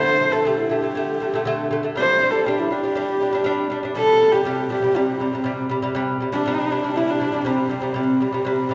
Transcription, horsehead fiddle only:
0.00 0.34 C5 loud
0.32 0.49 A4 medium
0.48 0.59 G4 medium
0.60 0.73 E4 medium
0.72 1.72 G4 medium
2.00 2.32 C5 loud
2.31 2.48 A4 medium
2.46 2.61 G4 medium
2.59 2.74 E4 medium
2.72 3.72 G4 medium
3.98 4.33 A4 loud
4.32 4.73 G4 medium
4.74 5.00 G4 medium
4.98 5.72 C4 medium
6.32 6.98 D4 medium
6.96 7.12 E4 medium
7.10 7.48 D4 medium
7.47 8.08 C4 medium
8.08 8.74 C4 medium

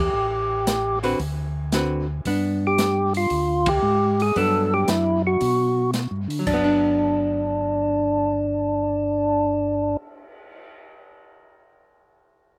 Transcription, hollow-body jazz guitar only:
1.03 1.18 D3 soft
1.03 1.18 C4 medium
1.03 1.18 F#4 medium
1.03 1.18 B4 medium
1.73 2.05 D3 soft
1.73 2.05 C4 medium
1.73 2.06 F#4 medium
1.73 2.06 B4 soft
2.27 3.74 B3 medium
2.27 3.74 D4 medium
4.36 5.84 F#3 medium
4.36 5.85 B3 medium
4.36 5.85 D4 medium
6.39 9.93 F#3 medium
6.53 10.07 B3 medium
6.64 10.18 D4 medium

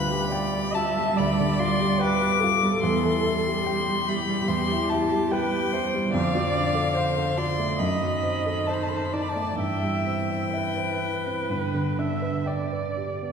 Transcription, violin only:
0.00 0.76 B5 loud
0.75 1.19 A5 medium
1.18 1.61 B5 medium
1.59 2.02 C6 loud
2.01 2.82 D6 loud
2.83 4.10 C6 loud
4.09 4.50 B5 loud
4.48 4.91 C6 loud
4.90 5.33 A5 medium
5.32 6.13 G5 loud
6.14 7.39 F5 loud
7.38 7.80 C6 medium
7.79 8.68 B5 medium
8.67 8.75 A5 medium
8.74 8.84 B5 medium
8.83 8.90 A5 medium
8.89 8.98 B5 medium
8.96 9.06 A5 medium
9.05 9.14 B5 medium
9.13 9.23 A5 medium
9.22 9.30 B5 medium
9.29 9.57 A5 medium
9.56 12.45 G5 medium

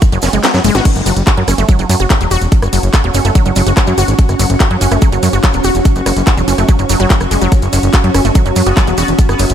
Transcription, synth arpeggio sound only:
0.12 0.17 F#3 medium
0.23 0.28 C#4 medium
0.33 0.41 G#3 medium
0.44 0.51 F#3 medium
0.65 0.70 G#3 loud
0.75 0.80 F#4 loud
1.06 1.09 F#3 medium
1.27 1.32 F#4 medium
1.37 1.45 F#3 medium
1.48 1.53 C#4 medium
1.58 1.66 A3 medium
1.69 1.72 F#3 medium
1.79 1.82 F#3 medium
1.89 1.97 F#3 medium
2.00 2.05 F#4 medium
2.10 2.15 F#3 medium
2.21 2.28 F#3 medium
2.31 2.34 F#4 loud
2.73 2.76 F#3 medium
2.94 2.99 F#4 medium
3.04 3.12 F#3 medium
3.14 3.19 C#4 medium
3.25 3.32 A3 medium
3.35 3.38 F#3 medium
3.46 3.49 F#3 medium
3.56 3.64 F#3 medium
3.67 3.72 F#4 medium
3.77 3.82 F#3 medium
3.87 3.95 F#3 medium
3.98 4.01 F#4 loud
4.39 4.42 F#3 medium
4.60 4.65 F#4 medium
4.71 4.78 F#3 medium
4.81 4.86 C#4 medium
4.92 4.99 A3 medium
5.02 5.05 F#3 medium
5.12 5.15 F#3 medium
5.23 5.30 F#3 medium
5.33 5.38 F#4 medium
5.44 5.49 F#3 medium
5.54 5.62 F#3 medium
5.64 5.67 F#4 loud
6.06 6.09 F#3 medium
6.27 6.32 F#4 medium
6.37 6.45 F#3 medium
6.48 6.53 C#4 medium
6.58 6.66 A3 medium
6.69 6.72 F#3 medium
6.79 6.82 F#3 medium
6.89 6.92 F#3 loud
7.00 7.05 F#3 loud
7.10 7.15 F#3 medium
7.31 7.36 G#3 medium
7.42 7.47 F#3 loud
7.73 7.76 F#3 medium
7.94 7.99 F#4 medium
8.04 8.12 F#3 medium
8.14 8.20 C#4 medium
8.25 8.32 A3 medium
8.35 8.38 F#3 medium
8.46 8.49 F#3 medium
8.56 8.64 F#3 medium
8.67 8.72 F#4 medium
8.77 8.82 F#3 medium
8.87 8.95 F#3 medium
8.98 9.01 F#4 loud
9.39 9.42 F#3 medium

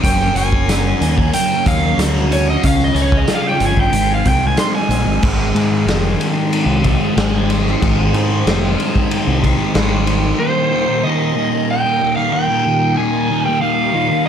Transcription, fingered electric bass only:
0.04 0.32 F#1 loud
0.34 0.92 F#1 loud
1.01 1.30 D#2 medium
1.66 1.95 D#2 medium
1.98 2.55 D2 medium
2.64 2.93 C#2 loud
2.95 3.24 C#2 medium
3.61 3.89 G1 loud
3.92 4.21 G#1 loud
4.26 4.55 C2 medium
4.89 5.04 A#1 medium
5.05 5.20 G#1 medium
5.22 5.51 G#1 medium
5.55 5.84 G#2 loud
5.85 6.15 F1 loud
6.66 6.96 C2 medium
7.17 7.74 G#1 medium
7.83 8.11 G#1 loud
8.13 8.42 G#2 loud
8.46 8.75 F1 loud
9.27 9.55 C2 medium
9.75 10.32 G#1 medium

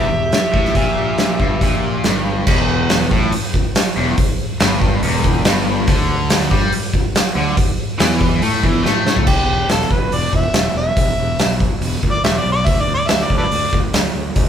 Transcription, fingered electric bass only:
0.00 0.10 E1 medium
0.12 0.32 E1 medium
0.54 0.74 A1 medium
0.75 1.36 A#1 medium
1.40 1.60 G1 medium
1.62 2.01 A#1 medium
2.05 2.44 G1 medium
2.47 3.07 E1 medium
3.12 3.31 A1 medium
3.97 4.16 E1 medium
4.19 muted fingered electric bass stroke soft
4.60 5.00 G1 loud
5.03 5.43 E1 medium
5.46 5.85 G1 loud
5.88 6.47 D2 medium
6.51 6.71 G2 medium
7.35 7.55 D2 medium
7.58 muted fingered electric bass stroke soft
8.00 8.39 E2 medium
8.42 8.62 A2 loud
8.64 8.83 E2 medium
8.84 9.24 A2 medium
9.27 9.41 E1 medium
9.48 9.62 E1 medium
9.70 9.84 E1 medium
9.91 10.05 E1 medium
10.12 10.26 E1 medium
10.34 10.48 E1 medium
10.54 10.68 E1 medium
10.74 10.89 E1 medium
10.97 11.11 E1 medium
11.18 11.32 E1 medium
11.38 11.67 B1 medium
11.81 11.95 E1 medium
12.04 12.18 D2 medium
12.24 12.38 E1 medium
12.46 12.67 B1 medium
12.67 12.81 D2 medium
12.88 13.02 D2 medium
13.09 13.23 D2 medium
13.30 13.44 D2 medium
13.51 13.66 D2 medium
13.73 13.87 D2 medium
13.93 14.08 D2 medium
14.15 14.29 D2 medium
14.36 14.49 D2 medium

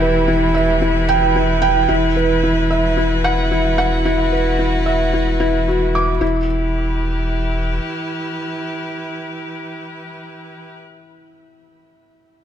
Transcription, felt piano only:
0.00 0.28 E4 medium
0.00 0.27 B4 medium
0.00 0.54 E5 medium
0.00 1.09 G5 medium
0.28 0.53 E4 medium
0.54 0.80 E5 medium
0.82 1.07 E4 medium
1.09 1.34 G5 medium
1.36 1.61 E4 medium
1.62 1.88 G5 medium
1.89 2.15 E4 medium
2.16 2.42 B4 medium
2.43 2.69 E4 medium
2.70 2.96 E5 medium
2.97 3.23 E4 medium
3.24 3.50 F#5 medium
3.51 3.77 E4 medium
3.78 4.04 F#5 medium
4.05 4.31 E4 medium
4.32 4.58 B4 medium
4.59 4.85 E4 medium
4.86 5.12 E5 medium
5.13 5.38 E4 medium
5.40 5.66 E4 medium
5.68 5.93 F#4 medium
5.95 6.10 D6 medium
6.21 6.46 E4 medium

